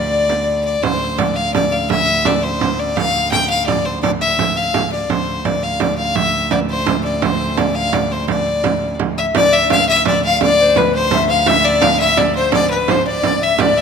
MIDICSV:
0, 0, Header, 1, 5, 480
1, 0, Start_track
1, 0, Tempo, 354191
1, 1133, Time_signature, 6, 3, 24, 8
1, 18721, End_track
2, 0, Start_track
2, 0, Title_t, "Fiddle"
2, 0, Program_c, 0, 110
2, 0, Note_on_c, 0, 74, 90
2, 823, Note_off_c, 0, 74, 0
2, 881, Note_on_c, 0, 74, 86
2, 1118, Note_on_c, 0, 72, 89
2, 1138, Note_off_c, 0, 74, 0
2, 1604, Note_on_c, 0, 74, 80
2, 1624, Note_off_c, 0, 72, 0
2, 1843, Note_on_c, 0, 77, 92
2, 1864, Note_off_c, 0, 74, 0
2, 2078, Note_off_c, 0, 77, 0
2, 2086, Note_on_c, 0, 74, 87
2, 2338, Note_on_c, 0, 77, 84
2, 2358, Note_off_c, 0, 74, 0
2, 2570, Note_off_c, 0, 77, 0
2, 2578, Note_on_c, 0, 76, 108
2, 3060, Note_on_c, 0, 74, 89
2, 3080, Note_off_c, 0, 76, 0
2, 3295, Note_on_c, 0, 72, 84
2, 3316, Note_off_c, 0, 74, 0
2, 3784, Note_on_c, 0, 74, 88
2, 3804, Note_off_c, 0, 72, 0
2, 4011, Note_on_c, 0, 77, 108
2, 4031, Note_off_c, 0, 74, 0
2, 4482, Note_off_c, 0, 77, 0
2, 4490, Note_on_c, 0, 79, 98
2, 4719, Note_off_c, 0, 79, 0
2, 4738, Note_on_c, 0, 77, 96
2, 4960, Note_off_c, 0, 77, 0
2, 4968, Note_on_c, 0, 74, 89
2, 5220, Note_on_c, 0, 72, 77
2, 5241, Note_off_c, 0, 74, 0
2, 5446, Note_off_c, 0, 72, 0
2, 5454, Note_on_c, 0, 74, 95
2, 5564, Note_off_c, 0, 74, 0
2, 5707, Note_on_c, 0, 76, 99
2, 6189, Note_on_c, 0, 77, 91
2, 6210, Note_off_c, 0, 76, 0
2, 6660, Note_off_c, 0, 77, 0
2, 6668, Note_on_c, 0, 74, 83
2, 6911, Note_on_c, 0, 72, 87
2, 6932, Note_off_c, 0, 74, 0
2, 7384, Note_on_c, 0, 74, 75
2, 7405, Note_off_c, 0, 72, 0
2, 7632, Note_on_c, 0, 77, 88
2, 7653, Note_off_c, 0, 74, 0
2, 7863, Note_on_c, 0, 74, 77
2, 7884, Note_off_c, 0, 77, 0
2, 8093, Note_off_c, 0, 74, 0
2, 8101, Note_on_c, 0, 77, 84
2, 8345, Note_on_c, 0, 76, 100
2, 8366, Note_off_c, 0, 77, 0
2, 8820, Note_off_c, 0, 76, 0
2, 8828, Note_on_c, 0, 74, 76
2, 8936, Note_off_c, 0, 74, 0
2, 9066, Note_on_c, 0, 72, 84
2, 9513, Note_off_c, 0, 72, 0
2, 9547, Note_on_c, 0, 74, 79
2, 9786, Note_on_c, 0, 72, 91
2, 9807, Note_off_c, 0, 74, 0
2, 10273, Note_on_c, 0, 74, 76
2, 10293, Note_off_c, 0, 72, 0
2, 10500, Note_on_c, 0, 77, 90
2, 10520, Note_off_c, 0, 74, 0
2, 10756, Note_on_c, 0, 74, 74
2, 10777, Note_off_c, 0, 77, 0
2, 11000, Note_on_c, 0, 72, 77
2, 11020, Note_off_c, 0, 74, 0
2, 11228, Note_off_c, 0, 72, 0
2, 11236, Note_on_c, 0, 74, 84
2, 12136, Note_off_c, 0, 74, 0
2, 12440, Note_on_c, 0, 76, 86
2, 12544, Note_off_c, 0, 76, 0
2, 12676, Note_on_c, 0, 74, 109
2, 12918, Note_on_c, 0, 76, 105
2, 12939, Note_off_c, 0, 74, 0
2, 13152, Note_off_c, 0, 76, 0
2, 13162, Note_on_c, 0, 77, 103
2, 13377, Note_off_c, 0, 77, 0
2, 13400, Note_on_c, 0, 76, 111
2, 13616, Note_off_c, 0, 76, 0
2, 13644, Note_on_c, 0, 74, 95
2, 13858, Note_off_c, 0, 74, 0
2, 13884, Note_on_c, 0, 77, 98
2, 14098, Note_off_c, 0, 77, 0
2, 14128, Note_on_c, 0, 74, 114
2, 14594, Note_on_c, 0, 71, 94
2, 14614, Note_off_c, 0, 74, 0
2, 14828, Note_off_c, 0, 71, 0
2, 14835, Note_on_c, 0, 72, 107
2, 15275, Note_off_c, 0, 72, 0
2, 15307, Note_on_c, 0, 77, 99
2, 15551, Note_on_c, 0, 76, 116
2, 15571, Note_off_c, 0, 77, 0
2, 15785, Note_on_c, 0, 74, 103
2, 15806, Note_off_c, 0, 76, 0
2, 16019, Note_on_c, 0, 77, 110
2, 16040, Note_off_c, 0, 74, 0
2, 16249, Note_off_c, 0, 77, 0
2, 16257, Note_on_c, 0, 76, 116
2, 16500, Note_on_c, 0, 74, 97
2, 16521, Note_off_c, 0, 76, 0
2, 16732, Note_off_c, 0, 74, 0
2, 16740, Note_on_c, 0, 72, 93
2, 16963, Note_off_c, 0, 72, 0
2, 16983, Note_on_c, 0, 74, 115
2, 17204, Note_off_c, 0, 74, 0
2, 17215, Note_on_c, 0, 71, 88
2, 17478, Note_on_c, 0, 72, 88
2, 17498, Note_off_c, 0, 71, 0
2, 17705, Note_off_c, 0, 72, 0
2, 17713, Note_on_c, 0, 74, 107
2, 18200, Note_on_c, 0, 76, 94
2, 18221, Note_off_c, 0, 74, 0
2, 18431, Note_on_c, 0, 74, 97
2, 18452, Note_off_c, 0, 76, 0
2, 18676, Note_on_c, 0, 76, 98
2, 18696, Note_off_c, 0, 74, 0
2, 18721, Note_off_c, 0, 76, 0
2, 18721, End_track
3, 0, Start_track
3, 0, Title_t, "Recorder"
3, 0, Program_c, 1, 74
3, 0, Note_on_c, 1, 74, 81
3, 892, Note_off_c, 1, 74, 0
3, 12424, Note_on_c, 1, 76, 76
3, 12685, Note_on_c, 1, 74, 91
3, 12705, Note_off_c, 1, 76, 0
3, 12898, Note_off_c, 1, 74, 0
3, 12907, Note_on_c, 1, 76, 88
3, 13154, Note_on_c, 1, 77, 95
3, 13174, Note_off_c, 1, 76, 0
3, 13377, Note_off_c, 1, 77, 0
3, 13385, Note_on_c, 1, 76, 96
3, 13608, Note_off_c, 1, 76, 0
3, 13622, Note_on_c, 1, 74, 91
3, 13846, Note_off_c, 1, 74, 0
3, 13873, Note_on_c, 1, 77, 87
3, 14113, Note_on_c, 1, 74, 86
3, 14133, Note_off_c, 1, 77, 0
3, 14348, Note_off_c, 1, 74, 0
3, 14356, Note_on_c, 1, 72, 86
3, 14601, Note_on_c, 1, 71, 86
3, 14621, Note_off_c, 1, 72, 0
3, 14841, Note_on_c, 1, 72, 97
3, 14861, Note_off_c, 1, 71, 0
3, 15066, Note_off_c, 1, 72, 0
3, 15074, Note_on_c, 1, 76, 96
3, 15314, Note_on_c, 1, 77, 93
3, 15334, Note_off_c, 1, 76, 0
3, 15557, Note_on_c, 1, 76, 102
3, 15577, Note_off_c, 1, 77, 0
3, 15789, Note_off_c, 1, 76, 0
3, 15799, Note_on_c, 1, 74, 84
3, 16014, Note_off_c, 1, 74, 0
3, 16045, Note_on_c, 1, 77, 90
3, 16256, Note_off_c, 1, 77, 0
3, 16268, Note_on_c, 1, 76, 93
3, 16512, Note_on_c, 1, 74, 95
3, 16533, Note_off_c, 1, 76, 0
3, 16733, Note_off_c, 1, 74, 0
3, 16742, Note_on_c, 1, 72, 81
3, 16983, Note_on_c, 1, 74, 84
3, 17004, Note_off_c, 1, 72, 0
3, 17201, Note_off_c, 1, 74, 0
3, 17209, Note_on_c, 1, 71, 74
3, 17291, Note_off_c, 1, 71, 0
3, 17451, Note_on_c, 1, 72, 84
3, 17677, Note_off_c, 1, 72, 0
3, 17685, Note_on_c, 1, 74, 82
3, 17903, Note_off_c, 1, 74, 0
3, 17912, Note_on_c, 1, 74, 83
3, 18146, Note_off_c, 1, 74, 0
3, 18166, Note_on_c, 1, 76, 86
3, 18385, Note_off_c, 1, 76, 0
3, 18393, Note_on_c, 1, 74, 84
3, 18721, Note_off_c, 1, 74, 0
3, 18721, End_track
4, 0, Start_track
4, 0, Title_t, "Viola da gamba"
4, 0, Program_c, 2, 42
4, 0, Note_on_c, 2, 38, 78
4, 1127, Note_off_c, 2, 38, 0
4, 1135, Note_on_c, 2, 38, 70
4, 6888, Note_off_c, 2, 38, 0
4, 6897, Note_on_c, 2, 38, 72
4, 12662, Note_off_c, 2, 38, 0
4, 12681, Note_on_c, 2, 38, 83
4, 18415, Note_off_c, 2, 38, 0
4, 18423, Note_on_c, 2, 38, 79
4, 18721, Note_off_c, 2, 38, 0
4, 18721, End_track
5, 0, Start_track
5, 0, Title_t, "Frame drum"
5, 398, Note_on_c, 9, 64, 66
5, 534, Note_off_c, 9, 64, 0
5, 647, Note_on_c, 9, 64, 25
5, 783, Note_off_c, 9, 64, 0
5, 1130, Note_on_c, 9, 64, 85
5, 1265, Note_off_c, 9, 64, 0
5, 1606, Note_on_c, 9, 64, 86
5, 1742, Note_off_c, 9, 64, 0
5, 2095, Note_on_c, 9, 64, 84
5, 2231, Note_off_c, 9, 64, 0
5, 2337, Note_on_c, 9, 64, 24
5, 2473, Note_off_c, 9, 64, 0
5, 2573, Note_on_c, 9, 64, 86
5, 2709, Note_off_c, 9, 64, 0
5, 3052, Note_on_c, 9, 64, 88
5, 3187, Note_off_c, 9, 64, 0
5, 3539, Note_on_c, 9, 64, 80
5, 3675, Note_off_c, 9, 64, 0
5, 3783, Note_on_c, 9, 64, 24
5, 3919, Note_off_c, 9, 64, 0
5, 4023, Note_on_c, 9, 64, 77
5, 4158, Note_off_c, 9, 64, 0
5, 4501, Note_on_c, 9, 64, 81
5, 4637, Note_off_c, 9, 64, 0
5, 4986, Note_on_c, 9, 64, 83
5, 5122, Note_off_c, 9, 64, 0
5, 5224, Note_on_c, 9, 64, 24
5, 5360, Note_off_c, 9, 64, 0
5, 5467, Note_on_c, 9, 64, 87
5, 5602, Note_off_c, 9, 64, 0
5, 5704, Note_on_c, 9, 64, 25
5, 5840, Note_off_c, 9, 64, 0
5, 5947, Note_on_c, 9, 64, 81
5, 6083, Note_off_c, 9, 64, 0
5, 6426, Note_on_c, 9, 64, 83
5, 6561, Note_off_c, 9, 64, 0
5, 6908, Note_on_c, 9, 64, 79
5, 7043, Note_off_c, 9, 64, 0
5, 7388, Note_on_c, 9, 64, 80
5, 7523, Note_off_c, 9, 64, 0
5, 7861, Note_on_c, 9, 64, 85
5, 7996, Note_off_c, 9, 64, 0
5, 8102, Note_on_c, 9, 64, 26
5, 8238, Note_off_c, 9, 64, 0
5, 8342, Note_on_c, 9, 64, 88
5, 8478, Note_off_c, 9, 64, 0
5, 8823, Note_on_c, 9, 64, 83
5, 8958, Note_off_c, 9, 64, 0
5, 9302, Note_on_c, 9, 64, 93
5, 9438, Note_off_c, 9, 64, 0
5, 9544, Note_on_c, 9, 64, 30
5, 9679, Note_off_c, 9, 64, 0
5, 9787, Note_on_c, 9, 64, 93
5, 9922, Note_off_c, 9, 64, 0
5, 10264, Note_on_c, 9, 64, 89
5, 10400, Note_off_c, 9, 64, 0
5, 10744, Note_on_c, 9, 64, 87
5, 10879, Note_off_c, 9, 64, 0
5, 11224, Note_on_c, 9, 64, 83
5, 11360, Note_off_c, 9, 64, 0
5, 11464, Note_on_c, 9, 64, 25
5, 11600, Note_off_c, 9, 64, 0
5, 11706, Note_on_c, 9, 64, 82
5, 11842, Note_off_c, 9, 64, 0
5, 11952, Note_on_c, 9, 64, 26
5, 12087, Note_off_c, 9, 64, 0
5, 12190, Note_on_c, 9, 64, 77
5, 12325, Note_off_c, 9, 64, 0
5, 12429, Note_on_c, 9, 64, 23
5, 12564, Note_off_c, 9, 64, 0
5, 12667, Note_on_c, 9, 64, 106
5, 12803, Note_off_c, 9, 64, 0
5, 13147, Note_on_c, 9, 64, 90
5, 13283, Note_off_c, 9, 64, 0
5, 13626, Note_on_c, 9, 64, 92
5, 13762, Note_off_c, 9, 64, 0
5, 14106, Note_on_c, 9, 64, 82
5, 14241, Note_off_c, 9, 64, 0
5, 14582, Note_on_c, 9, 64, 95
5, 14717, Note_off_c, 9, 64, 0
5, 15058, Note_on_c, 9, 64, 98
5, 15194, Note_off_c, 9, 64, 0
5, 15536, Note_on_c, 9, 64, 101
5, 15672, Note_off_c, 9, 64, 0
5, 16012, Note_on_c, 9, 64, 106
5, 16147, Note_off_c, 9, 64, 0
5, 16496, Note_on_c, 9, 64, 90
5, 16632, Note_off_c, 9, 64, 0
5, 16969, Note_on_c, 9, 64, 95
5, 17104, Note_off_c, 9, 64, 0
5, 17457, Note_on_c, 9, 64, 101
5, 17593, Note_off_c, 9, 64, 0
5, 17934, Note_on_c, 9, 64, 93
5, 18069, Note_off_c, 9, 64, 0
5, 18173, Note_on_c, 9, 64, 30
5, 18308, Note_off_c, 9, 64, 0
5, 18411, Note_on_c, 9, 64, 104
5, 18546, Note_off_c, 9, 64, 0
5, 18721, End_track
0, 0, End_of_file